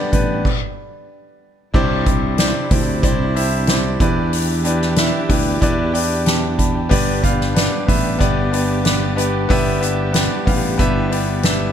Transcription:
Already playing: G2 B3 D4 G4 A4 B4 D5
0.12 A1 B3 D4 G4 B4, kick, closed hi-hat
0.45 kick, crash
1.74 C2 C3 C4 D4 E4 G4 C5 D5, kick, crash
2.05 D4 E4 G4 C5 D5, kick, hi-hat pedal, open hi-hat
2.38 D4 E4 G4 C5 D5, snare, hi-hat pedal, open hi-hat
2.70 D2 D4 E4 G4 C5 D5, kick, hi-hat pedal, open hi-hat
3.02 C2 D4 E4 G4 C5 D5, kick, hi-hat pedal, open hi-hat
3.34 D4 E4 G4 C5 E5, hi-hat pedal, open hi-hat
3.67 D4 E4 G4 C5 D5, snare, hi-hat pedal, open hi-hat
4.00 E2 E3 B3 D4 E4 G4 B4 D5, kick, hi-hat pedal, open hi-hat
4.33 hi-hat pedal, open hi-hat
4.64 D4 E4 G4 B4 D5, hi-hat pedal, open hi-hat
4.81 snare
4.96 D4 E4 G4 B4 E5, snare, hi-hat pedal, open hi-hat
5.29 D2 D4 E4 G4 B4 D5, kick, hi-hat pedal, open hi-hat
5.61 E2 D4 E4 G4 B4 D5 E5, kick, hi-hat pedal, open hi-hat
5.93 D4 E4 G4 B4 D5 G5, hi-hat pedal, open hi-hat
6.26 E5 G5 A5, snare, hi-hat pedal, open hi-hat
6.58 A5 B5, kick, hi-hat pedal, open hi-hat
6.74 G5 B5
6.89 G1 G2 B3 D4 G4 B4 D5, kick, hi-hat pedal, open hi-hat
7.22 B3 D4 G4 B4 F5, kick, hi-hat pedal, open hi-hat
7.41 snare
7.55 B3 D4 G4 B4 D5, snare, hi-hat pedal, open hi-hat
7.87 A1 B3 D4 G4 B4 E5, kick, hi-hat pedal, open hi-hat
8.19 G1 B3 D4 G4 B4 D5, kick, hi-hat pedal, open hi-hat
8.52 B3 D4 G4 B4 D5, hi-hat pedal, open hi-hat
8.84 B3 D4 G4 B4 D5, snare, hi-hat pedal, open hi-hat
9.16 B3 D4 G4 B4 D5, hi-hat pedal, open hi-hat
9.49 G1 G2 B3 D4 E4 G4 B4 E5, kick, hi-hat pedal, open hi-hat
9.81 B3 D4 G4 B4 E5, hi-hat pedal, open hi-hat
10.13 B3 D4 G4 B4 D5, snare, hi-hat pedal, open hi-hat
10.46 A1 B3 D4 G4 B4 F5, kick, hi-hat pedal, open hi-hat
10.78 G1 B3 D4 G4 B4 E5, kick, hi-hat pedal, open hi-hat
11.10 B3 D4 G4 B4 D5, hi-hat pedal, open hi-hat
11.43 B3 D4 G4 B4 E5, snare, hi-hat pedal, open hi-hat

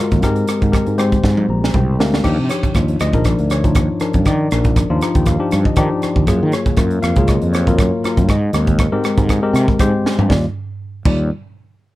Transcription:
0.00 G#3 F4 F#4 A#4
0.11 D#2, kick, closed hi-hat
0.22 G#2 G#3 C4 G4 A#4, kick, cross-stick, closed hi-hat
0.36 closed hi-hat
0.47 cross-stick, closed hi-hat
0.62 G#2, kick, closed hi-hat
0.72 G#3 C4 G4 A#4, kick, cross-stick, closed hi-hat
0.86 G#2, closed hi-hat
0.98 G#3 C4 G4 C5, cross-stick, closed hi-hat
1.12 kick, closed hi-hat
1.24 G#2, kick, snare
1.37 high tom
1.48 A#1 A#5
1.64 snare
1.74 C2 G5, kick, mid tom
1.99 D2 G#3 C4 G4 A#4 F5, snare
2.14 snare
2.24 D#2 F3 D4 D#4 G4, kick, cross-stick, crash
2.39 C3
2.49 C#5, cross-stick, closed hi-hat
2.63 muted fretless electric bass stroke, kick, closed hi-hat
2.74 D#2 F3 D4 D#4 F4, kick, cross-stick, closed hi-hat
2.88 closed hi-hat
3.00 D2 D#5, cross-stick, closed hi-hat
3.13 A#1 F3 D4 D#4 A#4, kick, closed hi-hat
3.24 D5, kick, cross-stick, closed hi-hat
3.39 D2, closed hi-hat
3.50 C#5, cross-stick, closed hi-hat
3.64 F3 D4 D#4 F4, kick, closed hi-hat
3.75 D#2, kick, cross-stick, closed hi-hat
4.00 F3 D4 D#4 A#4, muted fretless electric bass stroke, cross-stick, closed hi-hat
4.13 G2, kick, closed hi-hat
4.25 D#3 D5, kick, cross-stick, closed hi-hat
4.51 A#1 F3 D4 D#4 A#4, cross-stick, closed hi-hat
4.64 kick, closed hi-hat
4.76 kick, cross-stick, closed hi-hat
4.90 D#2 F3 D4 D#4 F4
5.01 A#5, cross-stick, closed hi-hat
5.15 D#2 G5, kick, closed hi-hat
5.26 F5, kick, cross-stick, closed hi-hat
5.39 F3 D4 D#4 G4
5.51 G2, cross-stick, closed hi-hat
5.65 D#5, kick
5.76 D#3 F3 D4 D#4 G4 D5, kick, cross-stick, closed hi-hat
6.02 muted fretless electric bass stroke, cross-stick, closed hi-hat
6.16 D#2, kick
6.27 F#2 F#3 A#3 F4 G#4, kick, cross-stick, closed hi-hat
6.43 D#3
6.52 C#5, cross-stick, closed hi-hat
6.66 muted fretless electric bass stroke, kick, closed hi-hat
6.77 F#2 F#3 A#3 F4 A#4, kick, cross-stick, closed hi-hat
6.91 closed hi-hat
7.02 F2 F5, cross-stick, closed hi-hat
7.16 C#2 F#3 A#3 F4 G#4, kick, closed hi-hat
7.28 D#5, kick, cross-stick, closed hi-hat
7.42 F2, closed hi-hat
7.53 C#5, cross-stick, closed hi-hat
7.67 F#3 A#3 F4 A#4, kick, closed hi-hat
7.79 F#2, kick, cross-stick, closed hi-hat
8.04 F#3 A#3 F4 A#4, muted fretless electric bass stroke, cross-stick, closed hi-hat
8.17 G2, kick, closed hi-hat
8.29 G#2 D#5, kick, cross-stick, closed hi-hat
8.53 D#2 G#3 C4 G4 A#4, cross-stick, closed hi-hat
8.67 kick, closed hi-hat
8.79 kick, cross-stick, closed hi-hat
8.92 G#2 G#3 C4 G4 A#4
9.04 cross-stick, closed hi-hat
9.17 G#2, kick, closed hi-hat
9.29 kick, cross-stick, closed hi-hat
9.42 G#3 C4 G4 A#4
9.53 C3, cross-stick, closed hi-hat
9.68 kick
9.79 G#2 G#3 C4 G4 C5, kick, cross-stick, closed hi-hat
10.04 muted fretless electric bass stroke, snare
10.19 G2, floor tom
10.29 D#2 G3 D#4 F4 D5, kick, snare
11.05 D#2 G3 D#4 F4 D5, kick, crash

